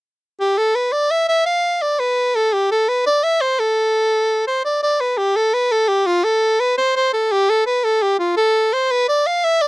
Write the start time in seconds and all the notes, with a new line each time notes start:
0.40 G4
0.58 A4
0.75 B4
0.92 D5
1.11 E5
1.29 E5
1.46 F5
1.82 D5
2.00 B4
2.36 A4
2.53 G4
2.72 A4
2.89 B4
3.07 D5
3.24 E5
3.41 C5
3.60 A4
4.48 C5
4.65 D5
4.83 D5
5.01 B4
5.18 G4
5.36 A4
5.54 B4
5.72 A4
5.89 G4
6.07 F4
6.24 A4
6.60 B4
6.78 C5
6.96 C5
7.14 A4
7.32 G4
7.50 A4
7.67 B4
7.84 A4
8.03 G4
8.20 F4
8.37 A4
8.73 C5
8.91 B4
9.09 D5
9.27 F5
9.44 E5
9.62 D5